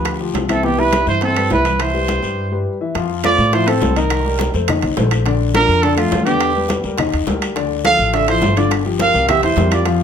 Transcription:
Already playing: D2 F3 D4 F4 G4 B4
0.05 high bongo, high conga, high timbale, long guiro, claves
0.20 F3 F4 G4, high bongo, high conga
0.34 C2, high bongo, low bongo, high conga, high timbale, low timbale, short guiro
0.49 E3 C4 E4 A4 E5, high conga, high timbale, short guiro, claves
0.63 E3 B3 E4 G4 E5, high bongo, high conga, long guiro
0.78 G3 E4 G4 B4, high bongo, high conga
0.92 high bongo, high conga, high timbale, low timbale, short guiro, claves
1.07 G2 E3 E4 C5 E5, high bongo, high conga, short guiro
1.21 C4 A4, high bongo, high conga, high timbale, long guiro
1.36 G3 G4 B4, high conga, high timbale, claves
1.50 C2 E4 B4, high bongo, low bongo, high conga, low timbale, short guiro
1.65 E3 E4 E5, high conga, high timbale, short guiro
1.79 E4 C5, high bongo, high timbale, long guiro, claves
1.93 G3 G4 B4, high bongo, high conga
2.08 high bongo, high conga, high timbale, low timbale, short guiro
2.22 G2 G3 G4 B4, high bongo, short guiro
2.52 G3 G4 B4
2.81 E3 E4 E5
2.95 F2 F3 F4 F5, high bongo, high conga, high timbale, long guiro
3.10 high conga
3.24 A3 F4 A4 C5 D5, high bongo, high conga, high timbale, low timbale, short guiro, claves
3.38 A2, high bongo, high conga, short guiro
3.53 F3 E4 F4 C5 F5, high bongo, high conga, high timbale, long guiro
3.67 A3 C4 A4 C5, high bongo, high conga, high timbale, claves
3.81 C2, high bongo, low bongo, high conga, low timbale, short guiro
3.96 D#3 D#4 A#4 D#5, high bongo, high timbale, short guiro
4.10 high bongo, high conga, high timbale, long guiro, claves
4.25 G3 G4 A#4, high conga
4.39 high bongo, high conga, high timbale, low timbale, short guiro
4.54 F2 A3 A4 C5, high bongo, high conga, short guiro
4.68 D#3 D#4 D#5, high bongo, high conga, low conga, high timbale, long guiro, claves
4.82 C2, high bongo, high conga, low conga, high timbale
4.97 A#1 A3 A4 C5, high bongo, low bongo, high conga, low timbale, short guiro
5.11 high conga, high timbale, short guiro, claves
5.26 D3 D4 D5, high bongo, high conga, high timbale, long guiro
5.40 high conga
5.54 F3 D4 F4 A4 A#4, high bongo, high conga, high timbale, low timbale, short guiro, claves
5.68 F2, high bongo, high conga, short guiro
5.82 D3 D4 A4 D5, high bongo, high conga, high timbale, long guiro
5.96 F3 A3 F4 A4, high bongo, high conga, high timbale, claves
6.12 E2, high bongo, low bongo, high conga, low timbale, short guiro
6.25 D3 B3 D4 G4 D5, high bongo, high timbale, short guiro
6.41 high bongo, high conga, high timbale, long guiro, claves
6.56 G3 G4 B4, high conga
6.69 high bongo, high conga, high timbale, low timbale, short guiro
6.83 D#2 G3 G4 A#4, high bongo, high conga, short guiro
6.98 D#3 D#4 D#5, high bongo, high conga, low conga, high timbale, long guiro, claves
7.12 D#2, high bongo, high conga, high timbale
7.27 D2 G3 G4 A#4, high bongo, low bongo, high conga, low timbale, short guiro
7.42 high timbale, short guiro, claves
7.56 D3 D4 D5, high bongo, high conga, high timbale, long guiro
7.71 high conga
7.84 F3 F4 A4 F5, high bongo, high conga, high timbale, low timbale, short guiro, claves
7.99 A1, high bongo, high conga, short guiro
8.13 D3 D4 A4 D5 E5, high bongo, high conga, high timbale, long guiro
8.28 F3 E4 F4 A4 C5, high bongo, high conga, high timbale, claves
8.42 G1, high bongo, low bongo, high conga, low timbale, short guiro
8.56 D3 D4 F4 D5, high bongo, high conga, high timbale, short guiro
8.71 high bongo, high conga, high timbale, long guiro, claves
8.85 F3 F4 G4, high conga
8.99 A#4 F5, high bongo, high conga, high timbale, low timbale, short guiro
9.14 C2 G3 G4 A#4, high bongo, high conga, short guiro
9.28 E3 E4 G4 E5, high bongo, high conga, low conga, high timbale, long guiro, claves
9.43 E2 E4 C5, high bongo, high conga, high timbale
9.57 F2 G3 G4 A#4, high bongo, low bongo, high conga, low timbale, short guiro
9.71 F4 D5, high timbale, short guiro, claves
9.86 F3 F4 F5, high bongo, high conga, high timbale, long guiro

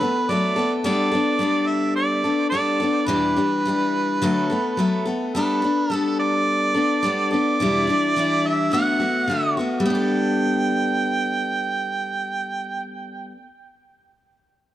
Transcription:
Already playing: B4
0.01 A3 B3 A4
0.29 F#3 A3 B3 A4 D5
0.56 A3 B3 A4
0.84 G3 B3 D4 A4 D5
1.11 B3 D4 A4
1.39 G3 B3 D4 A4
1.67 E5
1.96 D5
2.24 B3 D4 A4
2.50 G3 B3 D4 D5
2.55 A4
2.80 B3 D4 A4
3.06 E2 B2 E3 G3 D4 G4 B4
3.36 E3 G3 D4 G4
3.65 E3 G3 D4 G4
4.22 D3 F#3 A3 B3 A4
4.50 A3 B3 A4
4.77 F#3 A3 B3 A4
5.05 A3 B3 A4
5.34 G3 B3 D4 A4 B4
5.62 B3 D4 A4
5.90 G3 B3 D4 A4
6.19 D5
6.74 B3 D4 A4
7.03 G3 B3 D4 A4
7.31 B3 D4 A4 D5
7.60 E2 B2 E3 G3 D4 E4
7.87 E3 G3 D4 E4
8.16 E3 G3 D4 E4
8.47 E5
8.71 D3 A3 B3 F#4 F#5
9.00 A3 B3 F#4
9.28 D3 A3 B3 F#4
9.57 A3 B3 F#4
9.80 G3
9.85 B3 G5
9.90 D4
9.95 A4

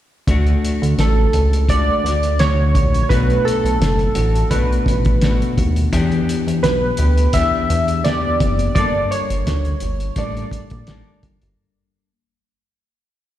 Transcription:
0.27 D2 A3 D4 F#4, kick, closed hi-hat
0.47 closed hi-hat
0.65 closed hi-hat
0.82 D2, closed hi-hat
0.98 A1 A4, snare, closed hi-hat
1.33 C#2, closed hi-hat
1.53 closed hi-hat
1.69 A3 D4 F#4 D5, kick, closed hi-hat
2.04 D2, snare, closed hi-hat
2.23 closed hi-hat
2.39 D3 A3 D4 F#4 C#5, snare, closed hi-hat
2.75 A#1, kick, closed hi-hat
2.94 closed hi-hat
3.03 C#5
3.09 B1 B2 A3 D4 F#4 B4, kick, closed hi-hat
3.30 closed hi-hat
3.45 A4, closed hi-hat
3.64 B1, closed hi-hat
3.80 F#1, snare, closed hi-hat
3.99 closed hi-hat
4.15 A1 A3 D4 F#4, closed hi-hat
4.35 closed hi-hat
4.50 B1 B2 A3 D4 F#4 B4, kick, closed hi-hat
4.72 closed hi-hat
4.86 A1, kick, closed hi-hat
5.05 kick, closed hi-hat
5.21 B2 A3 D4 F#4, snare, closed hi-hat
5.42 closed hi-hat
5.57 D#2, kick, closed hi-hat
5.76 closed hi-hat
5.92 E2 E3 B3 D4 G4, kick, closed hi-hat
6.11 closed hi-hat
6.29 closed hi-hat
6.47 E2, closed hi-hat
6.63 B1 B4, snare, closed hi-hat
6.97 D2 B3 D4 G4, closed hi-hat
7.18 closed hi-hat
7.33 E2 E3 B3 D4 G4 E5, kick, closed hi-hat
7.70 E2, closed hi-hat
7.88 closed hi-hat
8.04 E3 B3 D4 G4 D5, snare, closed hi-hat
8.40 F#1, kick, closed hi-hat
8.59 closed hi-hat
8.75 G1 G3 A#3 D4 A4 D5, kick, closed hi-hat
9.11 C#5, closed hi-hat
9.30 G1, closed hi-hat
9.47 D2, snare, closed hi-hat
9.65 closed hi-hat
9.80 G1, closed hi-hat
10.00 closed hi-hat
10.16 A1 G3 A#3 D4 A4 D5, kick, closed hi-hat
10.37 closed hi-hat
10.51 A#1, kick, closed hi-hat
10.70 A#1, kick, closed hi-hat
10.87 A1 G3 A#3 D4 A4, snare, closed hi-hat
11.23 G1, kick, closed hi-hat
11.42 G1, closed hi-hat

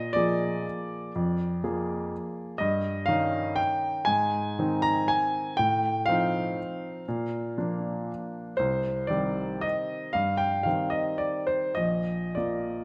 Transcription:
Already playing: A#2 D#5
0.13 F3 A#3 G#4 D5
1.15 F2
1.64 F3 A#3 G#4
2.58 G2 D#5
3.06 D#3 C#4 D#4 F5
3.56 G5
4.05 G#2 G#5
4.59 D#3 C4 D#4
4.82 A#5
5.08 G#5
5.57 A2 G5
6.06 F3 C4 D#4 F5
7.08 A#2
7.57 F3 A#3 D4
8.57 C2 C5
9.07 D#3 G3 C4 D5
9.61 D#5
10.13 G2 F5
10.37 G5
10.63 D#3 G3 C4 F5
10.90 D#5
11.18 D5
11.47 C5
11.75 A#1 D#5
12.35 F3 A#3 F4 D5

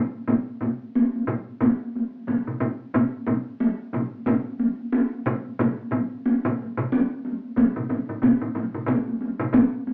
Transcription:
0.15 taiko high
0.28 taiko low-mid, taiko mid, taiko high
0.61 taiko low-mid, taiko mid, taiko high
0.82 taiko high
0.95 taiko high
1.16 taiko high
1.27 taiko low-mid, taiko mid, taiko high
1.49 taiko high
1.61 taiko low-mid, taiko mid, taiko high
1.82 taiko high
1.96 taiko high
2.15 taiko high
2.28 taiko low-mid, taiko mid, taiko high
2.47 taiko low-mid, taiko mid, taiko high
2.60 taiko low-mid, taiko mid, taiko high
2.82 taiko high
2.94 taiko low-mid, taiko mid, taiko high
3.15 taiko high
3.27 taiko low-mid, taiko mid, taiko high
3.48 taiko high
3.60 taiko high
3.93 taiko low-mid, taiko mid, taiko high
4.14 taiko high
4.26 taiko low-mid, taiko mid, taiko high
4.47 taiko high
4.60 taiko high
4.79 taiko high
4.92 taiko high
5.13 taiko high
5.26 taiko low-mid, taiko mid, taiko high
5.46 taiko high
5.59 taiko low-mid, taiko mid, taiko high
5.80 taiko high
5.92 taiko low-mid, taiko mid, taiko high
6.13 taiko high
6.26 taiko high
6.45 taiko low-mid, taiko mid, taiko high
6.59 taiko high
6.77 taiko low-mid, taiko mid, taiko high
6.92 taiko high
7.12 taiko high
7.25 taiko high
7.44 taiko high
7.56 taiko low-mid, taiko mid, taiko high
7.76 taiko low-mid, taiko mid, taiko high
7.90 taiko low-mid, taiko mid, taiko high
8.09 taiko low-mid, taiko mid, taiko high
8.22 taiko low-mid, taiko mid, taiko high
8.41 taiko low-mid, taiko mid, taiko high
8.55 taiko low-mid, taiko mid, taiko high
8.74 taiko low-mid, taiko mid, taiko high
8.86 taiko low-mid, taiko mid, taiko high
9.08 taiko high
9.21 taiko high
9.40 taiko low-mid, taiko mid, taiko high
9.53 taiko low-mid, taiko mid, taiko high
9.74 taiko high
9.87 taiko high

